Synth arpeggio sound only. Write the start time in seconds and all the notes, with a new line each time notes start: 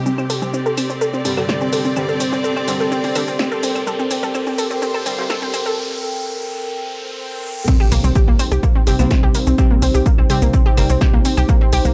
0.06 C4
0.18 C4
0.30 A4
0.42 C4
0.54 C4
0.66 A4
0.78 C4
0.90 C4
1.01 A4
1.14 C4
1.25 C4
1.37 A4
1.49 C4
1.61 C4
1.73 A4
1.85 C4
1.96 C4
2.09 A4
2.20 C4
2.33 C4
2.44 A4
2.56 C4
2.68 C4
2.80 A4
2.92 C4
3.04 C4
3.16 A4
3.28 C4
3.39 C4
3.52 A4
3.63 C4
3.75 C4
3.87 A4
3.99 C4
4.11 C4
4.23 A4
4.35 C4
4.47 C4
4.58 A4
4.71 C4
4.82 C4
4.94 A4
5.06 C4
5.18 C4
5.30 A4
5.42 C4
5.54 C4
5.66 A4
7.68 C4
7.80 G4
7.92 A#3
8.04 C4
8.15 G4
8.28 A#3
8.39 C4
8.52 G4
8.63 A#3
8.75 C4
8.87 G4
8.99 A#3
9.11 C4
9.23 G4
9.35 A#3
9.47 C4
9.58 G4
9.71 A#3
9.82 C4
9.94 G4
10.06 A#3
10.18 C4
10.30 G4
10.42 A#3
10.54 C4
10.66 G4
10.77 A#3
10.90 C4
11.01 G4
11.13 A#3
11.25 C4
11.37 G4
11.49 A#3
11.61 C4
11.73 G4
11.85 A#3